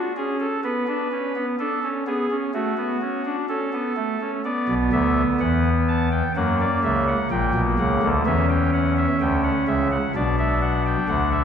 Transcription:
0.00 0.13 F#4 medium
0.17 0.46 C#4 medium
0.17 0.37 G#4 medium
0.40 0.61 A4 medium
0.64 0.84 B3 medium
0.64 1.45 B4 medium
0.87 1.08 D4 medium
1.11 1.32 C#4 medium
1.36 1.56 B3 medium
1.59 1.79 D4 medium
1.59 1.88 A4 medium
1.83 2.03 C#4 medium
2.07 2.27 B3 medium
2.07 2.36 G#4 medium
2.30 2.51 C#4 medium
2.54 2.74 A3 medium
2.54 3.36 F#4 medium
2.77 2.98 B3 medium
3.01 3.22 C#4 medium
3.25 3.46 D4 medium
3.49 3.70 C#4 medium
3.49 4.31 A4 medium
3.73 3.93 B3 medium
3.96 4.17 A3 medium
4.21 4.41 C#4 medium
4.44 6.09 B3 medium
4.44 4.74 D5 medium
4.69 4.89 B1 medium
4.69 4.89 B2 medium
4.92 5.22 D2 medium
4.92 5.22 D3 medium
4.92 5.22 E5 medium
5.40 6.22 E2 medium
5.40 6.22 E3 medium
5.40 5.70 F#5 medium
5.88 6.09 A5 medium
6.11 6.32 G5 medium
6.36 6.65 F#2 medium
6.36 6.65 F#3 medium
6.36 7.18 A#3 medium
6.36 6.56 F#5 medium
6.60 6.80 D5 medium
6.84 7.13 C#2 medium
6.84 7.13 C#3 medium
6.84 7.04 E5 medium
7.08 7.28 F#5 medium
7.31 7.51 A#1 medium
7.31 7.51 A#2 medium
7.31 8.13 A#3 medium
7.31 7.60 G5 medium
7.54 7.75 B1 medium
7.54 7.75 B2 medium
7.79 7.99 C#2 medium
7.79 7.99 C#3 medium
7.79 8.08 F#5 medium
8.02 8.23 D2 medium
8.02 8.23 D3 medium
8.26 9.07 E2 medium
8.26 9.07 E3 medium
8.26 9.89 C#4 medium
8.26 8.46 E5 medium
8.50 8.70 G5 medium
8.74 8.94 F#5 medium
8.97 9.17 E5 medium
9.21 9.50 D2 medium
9.21 9.50 D3 medium
9.21 9.41 G5 medium
9.44 9.64 F#5 medium
9.68 9.97 C#2 medium
9.68 9.97 C#3 medium
9.68 9.88 E5 medium
9.92 10.12 F#5 medium
10.15 10.96 B1 medium
10.15 10.96 B2 medium
10.15 11.44 D4 medium
10.15 10.36 D5 medium
10.39 10.59 E5 medium
10.62 10.82 F#5 medium
10.86 11.06 G5 medium
11.09 11.44 D2 medium
11.09 11.44 D3 medium
11.09 11.29 F#5 medium
11.32 11.44 E5 medium

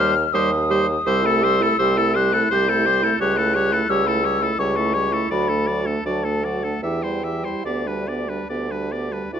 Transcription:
0.00 0.25 D#2 loud
0.00 0.14 G3 medium
0.00 0.14 G4 medium
0.00 0.15 C5 medium
0.00 0.35 F6 loud
0.33 0.98 D#2 medium
0.33 0.50 G3 medium
0.33 0.50 G4 medium
0.33 0.50 C5 medium
0.33 1.09 D#6 loud
0.70 0.87 G3 medium
0.70 0.86 G4 medium
0.70 0.87 C5 medium
1.05 1.71 C2 loud
1.05 1.27 G3 medium
1.05 1.25 G4 medium
1.05 1.27 C5 medium
1.05 2.18 E6 loud
1.23 1.45 A3 medium
1.23 1.43 E4 medium
1.23 1.45 A4 medium
1.42 1.63 G3 medium
1.42 1.62 G4 medium
1.42 1.63 C5 medium
1.61 1.79 A3 medium
1.61 1.78 E4 medium
1.61 1.78 A4 medium
1.78 2.43 C2 medium
1.78 1.99 G3 medium
1.78 1.99 G4 medium
1.78 1.99 C5 medium
1.97 2.17 A3 medium
1.97 2.17 E4 medium
1.97 2.16 A4 medium
2.15 2.35 G3 medium
2.15 2.35 G4 medium
2.15 2.35 C5 medium
2.15 2.55 F#6 loud
2.33 2.51 A3 medium
2.33 2.51 E4 medium
2.33 2.50 A4 medium
2.51 3.12 C2 medium
2.51 2.71 G3 medium
2.51 2.70 G4 medium
2.51 2.71 C5 medium
2.51 3.20 G6 loud
2.69 2.88 A3 medium
2.69 2.87 E4 medium
2.69 2.87 A4 medium
2.86 3.05 G3 medium
2.86 3.04 G4 medium
2.86 3.05 C5 medium
3.02 3.19 A3 medium
3.02 3.19 E4 medium
3.02 3.20 A4 medium
3.20 3.81 C#2 medium
3.20 3.38 G3 medium
3.20 3.39 G4 medium
3.20 3.39 C#5 medium
3.20 3.91 F#6 loud
3.37 3.56 A3 medium
3.37 3.56 E4 medium
3.37 3.56 A4 medium
3.54 3.73 G3 medium
3.54 3.74 G4 medium
3.54 3.74 C#5 medium
3.72 3.88 A3 medium
3.72 3.89 E4 medium
3.72 3.89 A4 medium
3.89 4.50 C#2 medium
3.89 4.07 G3 medium
3.89 4.08 G4 medium
3.89 4.09 C#5 medium
3.89 4.60 E6 loud
4.06 4.24 A3 medium
4.06 4.25 E4 medium
4.06 4.26 A4 medium
4.23 4.42 G3 medium
4.23 4.43 G4 medium
4.23 4.44 C#5 medium
4.40 4.58 A3 medium
4.40 4.58 E4 medium
4.40 4.59 A4 medium
4.58 5.22 C#2 medium
4.58 4.78 G3 medium
4.58 4.79 G4 medium
4.58 4.78 C#5 medium
4.58 5.30 C#6 loud
4.76 4.96 A3 medium
4.76 4.97 E4 medium
4.76 4.96 A4 medium
4.94 5.14 G3 medium
4.94 5.14 G4 medium
4.94 5.14 C#5 medium
5.13 5.30 A3 medium
5.13 5.31 E4 medium
5.13 5.30 A4 medium
5.31 5.96 D2 medium
5.31 5.51 F#3 medium
5.31 5.51 F#4 medium
5.31 5.50 D5 medium
5.31 5.78 B5 loud
5.49 5.70 A3 medium
5.49 5.70 D4 medium
5.49 5.69 A4 medium
5.67 5.88 F#3 medium
5.67 5.88 F#4 medium
5.67 5.88 D5 medium
5.86 6.04 A3 soft
5.86 6.06 D4 medium
5.86 6.05 A4 medium
6.05 6.74 D2 medium
6.05 6.26 F#3 medium
6.05 6.27 F#4 soft
6.05 6.26 D5 medium
6.05 6.44 A5 medium
6.24 6.45 A3 soft
6.24 6.46 D4 soft
6.24 6.46 A4 soft
6.43 6.64 F#3 soft
6.43 6.66 F#4 soft
6.43 6.65 D5 medium
6.43 6.82 F#5 medium
6.62 6.82 A3 soft
6.62 6.83 D4 soft
6.62 6.82 A4 soft
6.83 7.48 E2 medium
6.83 7.05 E3 medium
6.83 7.06 G4 soft
6.83 7.04 E5 soft
6.83 7.66 G5 medium
7.03 7.25 G3 soft
7.03 7.26 E4 soft
7.03 7.25 C5 soft
7.23 7.46 E3 soft
7.23 7.47 G4 soft
7.23 7.46 E5 soft
7.44 7.65 G3 soft
7.44 7.65 E4 soft
7.44 7.65 C5 soft
7.64 8.40 D2 medium
7.64 7.88 B3 soft
7.64 7.88 G4 soft
7.64 9.06 D5 medium
7.64 7.89 D5 soft
7.87 8.10 G3 soft
7.87 8.09 D4 soft
7.87 8.10 B4 soft
8.08 8.30 B3 soft
8.08 8.31 G4 soft
8.08 8.31 D5 soft
8.28 8.49 G3 soft
8.28 8.49 D4 soft
8.28 8.49 B4 soft
8.49 9.23 D2 medium
8.49 8.72 B3 soft
8.49 8.72 G4 soft
8.49 8.73 D5 soft
8.70 8.93 G3 soft
8.70 8.93 D4 soft
8.70 8.93 B4 soft
8.91 9.13 B3 soft
8.91 9.14 G4 soft
8.91 9.14 D5 soft
9.12 9.33 G3 soft
9.12 9.33 D4 soft
9.12 9.32 B4 soft
9.32 9.40 D2 soft
9.32 9.40 E4 medium
9.32 9.40 F#4 soft
9.32 9.40 D5 soft
9.32 9.40 E5 medium

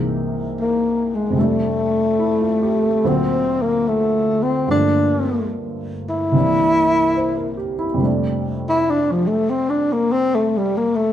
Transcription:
0.00 1.35 C2 soft
0.00 1.31 C3 soft
0.00 1.35 E3 soft
0.00 1.35 G#3 soft
0.00 1.36 A#3 soft
0.00 1.36 D#4 soft
0.61 1.17 A#3 medium
1.15 1.42 G#3 medium
1.30 2.99 F2 soft
1.30 3.00 C3 soft
1.36 3.02 G3 soft
1.36 3.03 A3 soft
1.41 3.09 A3 medium
1.41 3.04 D4 soft
2.19 2.58 E4 soft
2.41 2.76 F4 soft
2.63 2.87 G4 soft
2.83 3.11 A4 soft
3.04 4.69 D2 soft
3.04 4.69 A#2 soft
3.04 4.66 D3 soft
3.04 4.69 F#3 soft
3.04 4.69 C4 soft
3.04 3.63 C4 medium
3.62 3.90 A#3 medium
3.88 4.44 A3 medium
4.43 4.69 C4 medium
4.67 6.33 G2 soft
4.67 6.34 D3 soft
4.67 6.35 F3 soft
4.67 6.35 A3 soft
4.67 5.48 D4 medium
4.72 6.35 A#3 soft
6.09 7.70 E4 medium
6.32 7.99 C2 soft
6.32 7.95 C3 soft
6.32 8.00 E3 soft
6.36 8.01 A#3 soft
6.36 8.02 D4 soft
7.17 7.56 C5 soft
7.37 7.73 A#4 soft
7.57 7.83 G4 soft
7.79 8.08 E4 soft
7.94 11.13 F2 soft
7.94 11.13 C3 soft
8.00 11.13 G3 soft
8.00 11.13 A3 soft
8.05 11.13 D4 soft
8.69 8.92 E4 medium
8.90 9.13 D4 medium
9.11 9.28 F3 soft
9.27 9.51 A3 medium
9.50 9.71 C4 medium
9.70 9.94 D4 medium
9.92 10.13 A#3 medium
10.12 10.36 C4 medium
10.35 10.59 A3 medium
10.57 10.78 G3 medium
10.77 10.97 A#3 medium
10.95 11.13 A3 medium

